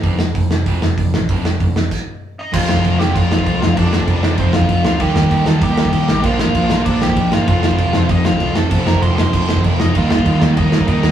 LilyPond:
<<
  \new Staff \with { instrumentName = "Lead electric guitar" } { \time 4/4 \key f \mixolydian \tempo 4 = 194 r1 | r2. r8 <ees' ees''>8 | <f' f''>8 <f' f''>4 <g' g''>8 <f' f''>2 | <d' d''>2 <c' c''>8 <f' f''>4 <f' f''>8 |
<g' g''>8 <g' g''>4 <a' a''>8 <g' g''>2 | <f' f''>2 <d' d''>8 <g' g''>4 <f' f''>8 | <f' f''>2 <ees' ees''>8 <f' f''>4 <a' a''>8 | <a' a''>8 <bes' bes''>8 <c'' c'''>8 <c'' c'''>4. r8 <ees' ees''>8 |
<f' f''>8 <f' f''>4 r8 <ees' ees''>4 <ees' ees''>4 | }
  \new Staff \with { instrumentName = "Distorted electric guitar" } { \clef bass \time 4/4 \key f \mixolydian r1 | r1 | <f, c f>4 <f, c f>8 <f, c f>8 <f, c f>4 <f, c f>8 <f, c f>8 | <f, c f>4 <f, c f>8 <f, c f>8 <f, c f>4 <f, c f>8 <f, c f>8 |
<ees bes ees'>4 <ees bes ees'>8 <ees bes ees'>8 <ees bes ees'>4 <ees bes ees'>8 <ees bes ees'>8 | <bes, f bes>4 <bes, f bes>8 <bes, f bes>8 <bes, f bes>4 <bes, f bes>8 <bes, f bes>8 | <f, c f>4 <f, c f>8 <f, c f>8 <f, c f>4 <f, c f>8 <f, c f>8 | <f, c f>4 <f, c f>8 <f, c f>8 <f, c f>4 <f, c f>8 <f, c f>8 |
<ees bes ees'>4 <ees bes ees'>8 <ees bes ees'>8 <ees bes ees'>4 <ees bes ees'>8 <ees bes ees'>8 | }
  \new Staff \with { instrumentName = "Distorted electric guitar" } { \clef bass \time 4/4 \key f \mixolydian <f, c f>8 <f, c>8 <f, c>8 <f, c>8 <f, c f>8 <f, c>8 <f, c>8 <f, c>8 | <f, c f>8 <f, c>8 <f, c>8 <f, c>8 r2 | <f a c' f'>1 | <f a c' f'>1 |
<ees g bes ees'>1 | <bes, f bes d'>1 | <f, c f a c'>1 | <f, c f a c'>1 |
<ees g bes ees'>1 | }
  \new Staff \with { instrumentName = "Overdriven electric guitar" } { \clef bass \time 4/4 \key f \mixolydian <f, c f>8 <f, c>8 <f, c>8 <f, c>8 <f, c f>8 <f, c>8 <f, c>8 <f, c>8 | <f, c f>8 <f, c>8 <f, c>8 <f, c>8 r2 | <f, c f>1 | <f, c f>1 |
<ees bes ees'>1 | <bes, f bes>1 | <f, c f>1 | <f, c f>1 |
<ees bes ees'>1 | }
  \new Staff \with { instrumentName = "Picked electric bass" } { \clef bass \time 4/4 \key f \mixolydian f,,4 f,,8 f,,8 f,,8 f,,8 f,,8 a,,8 | f,,8 f,,8 f,,8 f,,8 r2 | f,,8 f,,8 f,,8 f,,8 f,,4 c,8 f,,8 | f,,8 f,,8 f,,8 f,,8 f,,8 f,,8 f,,8 d,8 |
ees,8 ees,8 ees,8 ees,8 ees,4 bes,8 a,,8 | bes,,8 bes,,8 bes,,8 bes,,8 bes,,8 bes,,8 bes,,8 g,,8 | f,,8 f,,8 f,,8 f,,8 f,,4 c,8 f,,8 | f,,8 f,,8 f,,8 f,,8 f,,8 f,,8 f,,8 f,,8 |
ees,8 ees,8 ees,8 ees,8 ees,4 bes,8 ees,8 | }
  \new DrumStaff \with { instrumentName = "Drums" } \drummode { \time 4/4 <hho bd>8 sn8 <hho bd>8 sn8 <hho bd>8 sn8 <hho bd>8 sn8 | <hho bd>8 sn8 <hho bd>8 sn8 <cymc bd>4 r4 | <cymc bd>8 sn16 bd16 <cymc bd>8 sn8 <cymc bd>8 sn16 bd16 <cymc bd>8 sn8 | <cymc bd>8 sn16 bd16 <cymc bd>8 sn8 <cymc bd>8 sn16 bd16 <cymc bd>8 sn8 |
<cymc bd>8 sn16 bd16 <cymc bd>8 sn8 <cymc bd>8 sn16 bd16 <cymc bd>8 sn8 | <cymc bd>8 sn16 bd16 <cymc bd>8 sn8 <cymc bd>8 sn16 bd16 <cymc bd>8 sn8 | <cymc bd>8 sn16 bd16 <cymc bd>8 sn8 <cymc bd>8 sn16 bd16 <cymc bd>8 sn8 | <cymc bd>8 sn16 bd16 <cymc bd>8 sn8 <cymc bd>8 sn16 bd16 <cymc bd>8 sn8 |
<cymc bd>8 sn16 bd16 <cymc bd>8 sn8 <cymc bd>8 sn16 bd16 <cymc bd>8 sn8 | }
>>